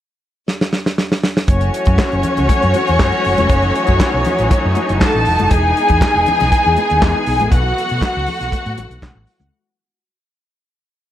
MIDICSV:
0, 0, Header, 1, 6, 480
1, 0, Start_track
1, 0, Tempo, 502092
1, 1418, Time_signature, 4, 2, 24, 8
1, 10625, End_track
2, 0, Start_track
2, 0, Title_t, "Violin section"
2, 0, Program_c, 0, 48
2, 1405, Note_on_c, 0, 61, 75
2, 1414, Note_on_c, 0, 73, 91
2, 4746, Note_off_c, 0, 61, 0
2, 4751, Note_off_c, 0, 73, 0
2, 4793, Note_on_c, 0, 69, 67
2, 4796, Note_on_c, 0, 81, 79
2, 5263, Note_off_c, 0, 69, 0
2, 5264, Note_off_c, 0, 81, 0
2, 5268, Note_on_c, 0, 68, 78
2, 5268, Note_on_c, 0, 80, 92
2, 7149, Note_off_c, 0, 68, 0
2, 7149, Note_off_c, 0, 80, 0
2, 7174, Note_on_c, 0, 78, 91
2, 7176, Note_on_c, 0, 66, 76
2, 9054, Note_off_c, 0, 78, 0
2, 9055, Note_off_c, 0, 66, 0
2, 10625, End_track
3, 0, Start_track
3, 0, Title_t, "String section"
3, 0, Program_c, 1, 48
3, 1431, Note_on_c, 1, 61, 61
3, 1431, Note_on_c, 1, 66, 72
3, 1432, Note_on_c, 1, 54, 63
3, 1434, Note_on_c, 1, 52, 66
3, 1434, Note_on_c, 1, 57, 54
3, 3334, Note_off_c, 1, 61, 0
3, 3354, Note_on_c, 1, 63, 67
3, 5240, Note_off_c, 1, 54, 0
3, 5240, Note_off_c, 1, 66, 0
3, 5241, Note_off_c, 1, 57, 0
3, 5271, Note_on_c, 1, 59, 61
3, 5273, Note_on_c, 1, 56, 68
3, 5273, Note_on_c, 1, 68, 77
3, 7155, Note_off_c, 1, 63, 0
3, 7170, Note_off_c, 1, 56, 0
3, 7171, Note_off_c, 1, 68, 0
3, 7188, Note_on_c, 1, 66, 83
3, 7189, Note_on_c, 1, 54, 57
3, 7189, Note_on_c, 1, 57, 58
3, 9062, Note_off_c, 1, 59, 0
3, 9070, Note_off_c, 1, 52, 0
3, 9080, Note_off_c, 1, 66, 0
3, 9081, Note_off_c, 1, 54, 0
3, 9081, Note_off_c, 1, 57, 0
3, 10625, End_track
4, 0, Start_track
4, 0, Title_t, "Fingered electric bass"
4, 0, Program_c, 2, 33
4, 1421, Note_on_c, 2, 30, 102
4, 1609, Note_off_c, 2, 30, 0
4, 1791, Note_on_c, 2, 42, 90
4, 1879, Note_off_c, 2, 42, 0
4, 2035, Note_on_c, 2, 30, 77
4, 2121, Note_off_c, 2, 30, 0
4, 2282, Note_on_c, 2, 37, 82
4, 2366, Note_off_c, 2, 37, 0
4, 2520, Note_on_c, 2, 42, 97
4, 2605, Note_off_c, 2, 42, 0
4, 2765, Note_on_c, 2, 40, 93
4, 2868, Note_off_c, 2, 40, 0
4, 2868, Note_on_c, 2, 42, 86
4, 2967, Note_off_c, 2, 42, 0
4, 3118, Note_on_c, 2, 30, 74
4, 3213, Note_off_c, 2, 30, 0
4, 3239, Note_on_c, 2, 28, 80
4, 3326, Note_off_c, 2, 28, 0
4, 3346, Note_on_c, 2, 30, 98
4, 3536, Note_off_c, 2, 30, 0
4, 3718, Note_on_c, 2, 42, 83
4, 3806, Note_off_c, 2, 42, 0
4, 3958, Note_on_c, 2, 35, 91
4, 4046, Note_off_c, 2, 35, 0
4, 4202, Note_on_c, 2, 33, 84
4, 4289, Note_off_c, 2, 33, 0
4, 4450, Note_on_c, 2, 42, 89
4, 4534, Note_off_c, 2, 42, 0
4, 4684, Note_on_c, 2, 30, 88
4, 4770, Note_off_c, 2, 30, 0
4, 4925, Note_on_c, 2, 33, 88
4, 5011, Note_off_c, 2, 33, 0
4, 5036, Note_on_c, 2, 28, 78
4, 5134, Note_off_c, 2, 28, 0
4, 5170, Note_on_c, 2, 30, 75
4, 5254, Note_off_c, 2, 30, 0
4, 5271, Note_on_c, 2, 28, 92
4, 5460, Note_off_c, 2, 28, 0
4, 5644, Note_on_c, 2, 40, 94
4, 5731, Note_off_c, 2, 40, 0
4, 5883, Note_on_c, 2, 28, 85
4, 5970, Note_off_c, 2, 28, 0
4, 6123, Note_on_c, 2, 35, 92
4, 6210, Note_off_c, 2, 35, 0
4, 6371, Note_on_c, 2, 40, 95
4, 6455, Note_off_c, 2, 40, 0
4, 6608, Note_on_c, 2, 39, 85
4, 6712, Note_off_c, 2, 39, 0
4, 6712, Note_on_c, 2, 40, 90
4, 6811, Note_off_c, 2, 40, 0
4, 6952, Note_on_c, 2, 35, 72
4, 7081, Note_off_c, 2, 35, 0
4, 7081, Note_on_c, 2, 33, 88
4, 7167, Note_off_c, 2, 33, 0
4, 7191, Note_on_c, 2, 35, 107
4, 7378, Note_off_c, 2, 35, 0
4, 7565, Note_on_c, 2, 47, 83
4, 7649, Note_off_c, 2, 47, 0
4, 7808, Note_on_c, 2, 37, 82
4, 7890, Note_off_c, 2, 37, 0
4, 8040, Note_on_c, 2, 35, 73
4, 8125, Note_off_c, 2, 35, 0
4, 8282, Note_on_c, 2, 45, 84
4, 8366, Note_off_c, 2, 45, 0
4, 8393, Note_on_c, 2, 33, 79
4, 8489, Note_off_c, 2, 33, 0
4, 8513, Note_on_c, 2, 35, 82
4, 8600, Note_off_c, 2, 35, 0
4, 8629, Note_on_c, 2, 35, 73
4, 8726, Note_off_c, 2, 35, 0
4, 8749, Note_on_c, 2, 33, 82
4, 8837, Note_off_c, 2, 33, 0
4, 8984, Note_on_c, 2, 37, 87
4, 9073, Note_off_c, 2, 37, 0
4, 10625, End_track
5, 0, Start_track
5, 0, Title_t, "Muted fingered electric bass strokes"
5, 4311, Note_on_c, 9, 29, 46
5, 4406, Note_off_c, 9, 29, 0
5, 10625, End_track
6, 0, Start_track
6, 0, Title_t, "Drums"
6, 459, Note_on_c, 9, 38, 66
6, 555, Note_off_c, 9, 38, 0
6, 586, Note_on_c, 9, 38, 82
6, 682, Note_off_c, 9, 38, 0
6, 695, Note_on_c, 9, 38, 85
6, 791, Note_off_c, 9, 38, 0
6, 824, Note_on_c, 9, 38, 77
6, 920, Note_off_c, 9, 38, 0
6, 939, Note_on_c, 9, 38, 93
6, 1034, Note_off_c, 9, 38, 0
6, 1068, Note_on_c, 9, 38, 84
6, 1163, Note_off_c, 9, 38, 0
6, 1181, Note_on_c, 9, 38, 102
6, 1276, Note_off_c, 9, 38, 0
6, 1308, Note_on_c, 9, 38, 94
6, 1404, Note_off_c, 9, 38, 0
6, 1413, Note_on_c, 9, 42, 74
6, 1416, Note_on_c, 9, 36, 107
6, 1509, Note_off_c, 9, 42, 0
6, 1512, Note_off_c, 9, 36, 0
6, 1537, Note_on_c, 9, 42, 35
6, 1633, Note_off_c, 9, 42, 0
6, 1664, Note_on_c, 9, 42, 66
6, 1759, Note_off_c, 9, 42, 0
6, 1773, Note_on_c, 9, 42, 46
6, 1787, Note_on_c, 9, 36, 83
6, 1868, Note_off_c, 9, 42, 0
6, 1882, Note_off_c, 9, 36, 0
6, 1893, Note_on_c, 9, 36, 101
6, 1898, Note_on_c, 9, 38, 111
6, 1905, Note_on_c, 9, 39, 91
6, 1908, Note_on_c, 9, 63, 73
6, 1989, Note_off_c, 9, 36, 0
6, 1993, Note_off_c, 9, 38, 0
6, 2001, Note_off_c, 9, 39, 0
6, 2003, Note_off_c, 9, 63, 0
6, 2025, Note_on_c, 9, 42, 30
6, 2120, Note_off_c, 9, 42, 0
6, 2134, Note_on_c, 9, 42, 61
6, 2148, Note_on_c, 9, 64, 71
6, 2230, Note_off_c, 9, 42, 0
6, 2244, Note_off_c, 9, 64, 0
6, 2265, Note_on_c, 9, 42, 46
6, 2274, Note_on_c, 9, 64, 77
6, 2361, Note_off_c, 9, 42, 0
6, 2369, Note_off_c, 9, 64, 0
6, 2381, Note_on_c, 9, 36, 111
6, 2383, Note_on_c, 9, 42, 87
6, 2385, Note_on_c, 9, 62, 49
6, 2477, Note_off_c, 9, 36, 0
6, 2478, Note_off_c, 9, 42, 0
6, 2480, Note_off_c, 9, 62, 0
6, 2507, Note_on_c, 9, 42, 37
6, 2603, Note_off_c, 9, 42, 0
6, 2617, Note_on_c, 9, 42, 57
6, 2623, Note_on_c, 9, 62, 52
6, 2713, Note_off_c, 9, 42, 0
6, 2718, Note_off_c, 9, 62, 0
6, 2747, Note_on_c, 9, 42, 45
6, 2843, Note_off_c, 9, 42, 0
6, 2861, Note_on_c, 9, 38, 121
6, 2863, Note_on_c, 9, 63, 76
6, 2864, Note_on_c, 9, 36, 125
6, 2869, Note_on_c, 9, 39, 92
6, 2957, Note_off_c, 9, 38, 0
6, 2959, Note_off_c, 9, 63, 0
6, 2960, Note_off_c, 9, 36, 0
6, 2964, Note_off_c, 9, 39, 0
6, 2983, Note_on_c, 9, 42, 29
6, 3079, Note_off_c, 9, 42, 0
6, 3101, Note_on_c, 9, 46, 55
6, 3197, Note_off_c, 9, 46, 0
6, 3227, Note_on_c, 9, 42, 44
6, 3233, Note_on_c, 9, 63, 83
6, 3323, Note_off_c, 9, 42, 0
6, 3329, Note_off_c, 9, 63, 0
6, 3340, Note_on_c, 9, 42, 83
6, 3342, Note_on_c, 9, 62, 35
6, 3343, Note_on_c, 9, 36, 112
6, 3436, Note_off_c, 9, 42, 0
6, 3438, Note_off_c, 9, 36, 0
6, 3438, Note_off_c, 9, 62, 0
6, 3464, Note_on_c, 9, 42, 31
6, 3559, Note_off_c, 9, 42, 0
6, 3589, Note_on_c, 9, 42, 63
6, 3684, Note_off_c, 9, 42, 0
6, 3697, Note_on_c, 9, 42, 39
6, 3714, Note_on_c, 9, 36, 79
6, 3793, Note_off_c, 9, 42, 0
6, 3809, Note_off_c, 9, 36, 0
6, 3821, Note_on_c, 9, 36, 99
6, 3822, Note_on_c, 9, 38, 107
6, 3830, Note_on_c, 9, 39, 88
6, 3835, Note_on_c, 9, 63, 75
6, 3917, Note_off_c, 9, 36, 0
6, 3918, Note_off_c, 9, 38, 0
6, 3925, Note_off_c, 9, 39, 0
6, 3930, Note_off_c, 9, 63, 0
6, 4058, Note_on_c, 9, 42, 62
6, 4078, Note_on_c, 9, 64, 80
6, 4154, Note_off_c, 9, 42, 0
6, 4173, Note_off_c, 9, 64, 0
6, 4191, Note_on_c, 9, 42, 49
6, 4287, Note_off_c, 9, 42, 0
6, 4311, Note_on_c, 9, 36, 114
6, 4311, Note_on_c, 9, 42, 79
6, 4314, Note_on_c, 9, 62, 52
6, 4406, Note_off_c, 9, 36, 0
6, 4407, Note_off_c, 9, 42, 0
6, 4409, Note_off_c, 9, 62, 0
6, 4543, Note_on_c, 9, 42, 55
6, 4558, Note_on_c, 9, 62, 51
6, 4639, Note_off_c, 9, 42, 0
6, 4653, Note_off_c, 9, 62, 0
6, 4676, Note_on_c, 9, 42, 45
6, 4771, Note_off_c, 9, 42, 0
6, 4786, Note_on_c, 9, 63, 73
6, 4790, Note_on_c, 9, 38, 113
6, 4791, Note_on_c, 9, 36, 110
6, 4797, Note_on_c, 9, 39, 89
6, 4881, Note_off_c, 9, 63, 0
6, 4885, Note_off_c, 9, 38, 0
6, 4887, Note_off_c, 9, 36, 0
6, 4893, Note_off_c, 9, 39, 0
6, 5021, Note_on_c, 9, 46, 57
6, 5116, Note_off_c, 9, 46, 0
6, 5149, Note_on_c, 9, 42, 46
6, 5160, Note_on_c, 9, 63, 81
6, 5245, Note_off_c, 9, 42, 0
6, 5256, Note_off_c, 9, 63, 0
6, 5265, Note_on_c, 9, 42, 88
6, 5269, Note_on_c, 9, 36, 100
6, 5271, Note_on_c, 9, 62, 39
6, 5360, Note_off_c, 9, 42, 0
6, 5364, Note_off_c, 9, 36, 0
6, 5367, Note_off_c, 9, 62, 0
6, 5516, Note_on_c, 9, 42, 61
6, 5612, Note_off_c, 9, 42, 0
6, 5626, Note_on_c, 9, 42, 42
6, 5639, Note_on_c, 9, 36, 70
6, 5721, Note_off_c, 9, 42, 0
6, 5735, Note_off_c, 9, 36, 0
6, 5746, Note_on_c, 9, 36, 107
6, 5753, Note_on_c, 9, 38, 100
6, 5757, Note_on_c, 9, 63, 73
6, 5761, Note_on_c, 9, 39, 77
6, 5842, Note_off_c, 9, 36, 0
6, 5849, Note_off_c, 9, 38, 0
6, 5852, Note_off_c, 9, 63, 0
6, 5856, Note_off_c, 9, 39, 0
6, 5985, Note_on_c, 9, 42, 65
6, 6003, Note_on_c, 9, 64, 87
6, 6081, Note_off_c, 9, 42, 0
6, 6099, Note_off_c, 9, 64, 0
6, 6119, Note_on_c, 9, 42, 47
6, 6127, Note_on_c, 9, 64, 80
6, 6129, Note_on_c, 9, 38, 35
6, 6214, Note_off_c, 9, 42, 0
6, 6223, Note_off_c, 9, 64, 0
6, 6224, Note_off_c, 9, 38, 0
6, 6233, Note_on_c, 9, 36, 114
6, 6238, Note_on_c, 9, 42, 82
6, 6239, Note_on_c, 9, 62, 49
6, 6328, Note_off_c, 9, 36, 0
6, 6334, Note_off_c, 9, 42, 0
6, 6334, Note_off_c, 9, 62, 0
6, 6467, Note_on_c, 9, 42, 57
6, 6480, Note_on_c, 9, 62, 54
6, 6563, Note_off_c, 9, 42, 0
6, 6575, Note_off_c, 9, 62, 0
6, 6595, Note_on_c, 9, 42, 43
6, 6690, Note_off_c, 9, 42, 0
6, 6710, Note_on_c, 9, 36, 116
6, 6710, Note_on_c, 9, 38, 112
6, 6712, Note_on_c, 9, 63, 67
6, 6718, Note_on_c, 9, 39, 95
6, 6806, Note_off_c, 9, 36, 0
6, 6806, Note_off_c, 9, 38, 0
6, 6807, Note_off_c, 9, 63, 0
6, 6814, Note_off_c, 9, 39, 0
6, 6945, Note_on_c, 9, 46, 59
6, 7040, Note_off_c, 9, 46, 0
6, 7071, Note_on_c, 9, 42, 44
6, 7083, Note_on_c, 9, 63, 81
6, 7166, Note_off_c, 9, 42, 0
6, 7179, Note_off_c, 9, 63, 0
6, 7186, Note_on_c, 9, 36, 110
6, 7188, Note_on_c, 9, 42, 81
6, 7195, Note_on_c, 9, 62, 33
6, 7282, Note_off_c, 9, 36, 0
6, 7284, Note_off_c, 9, 42, 0
6, 7290, Note_off_c, 9, 62, 0
6, 7439, Note_on_c, 9, 42, 57
6, 7535, Note_off_c, 9, 42, 0
6, 7544, Note_on_c, 9, 42, 40
6, 7639, Note_off_c, 9, 42, 0
6, 7662, Note_on_c, 9, 36, 98
6, 7670, Note_on_c, 9, 38, 105
6, 7677, Note_on_c, 9, 39, 85
6, 7677, Note_on_c, 9, 63, 75
6, 7758, Note_off_c, 9, 36, 0
6, 7765, Note_off_c, 9, 38, 0
6, 7773, Note_off_c, 9, 39, 0
6, 7773, Note_off_c, 9, 63, 0
6, 7902, Note_on_c, 9, 46, 61
6, 7917, Note_on_c, 9, 64, 78
6, 7997, Note_off_c, 9, 46, 0
6, 8013, Note_off_c, 9, 64, 0
6, 8037, Note_on_c, 9, 42, 51
6, 8046, Note_on_c, 9, 38, 33
6, 8132, Note_off_c, 9, 42, 0
6, 8142, Note_off_c, 9, 38, 0
6, 8148, Note_on_c, 9, 36, 101
6, 8155, Note_on_c, 9, 42, 79
6, 8156, Note_on_c, 9, 62, 50
6, 8244, Note_off_c, 9, 36, 0
6, 8250, Note_off_c, 9, 42, 0
6, 8251, Note_off_c, 9, 62, 0
6, 8278, Note_on_c, 9, 42, 32
6, 8374, Note_off_c, 9, 42, 0
6, 8390, Note_on_c, 9, 42, 58
6, 8394, Note_on_c, 9, 62, 50
6, 8485, Note_off_c, 9, 42, 0
6, 8489, Note_off_c, 9, 62, 0
6, 8519, Note_on_c, 9, 42, 43
6, 8614, Note_off_c, 9, 42, 0
6, 8626, Note_on_c, 9, 36, 109
6, 8626, Note_on_c, 9, 63, 73
6, 8632, Note_on_c, 9, 38, 101
6, 8640, Note_on_c, 9, 39, 88
6, 8722, Note_off_c, 9, 36, 0
6, 8722, Note_off_c, 9, 63, 0
6, 8728, Note_off_c, 9, 38, 0
6, 8735, Note_off_c, 9, 39, 0
6, 8862, Note_on_c, 9, 46, 60
6, 8958, Note_off_c, 9, 46, 0
6, 8990, Note_on_c, 9, 63, 76
6, 8994, Note_on_c, 9, 42, 42
6, 9086, Note_off_c, 9, 63, 0
6, 9090, Note_off_c, 9, 42, 0
6, 10625, End_track
0, 0, End_of_file